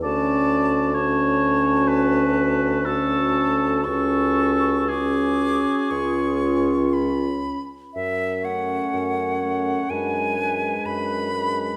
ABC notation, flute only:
X:1
M:4/4
L:1/8
Q:1/4=61
K:F#m
V:1 name="Flute"
a2 a4 a2 | c'2 d'2 c'2 b2 | e f3 g2 b2 |]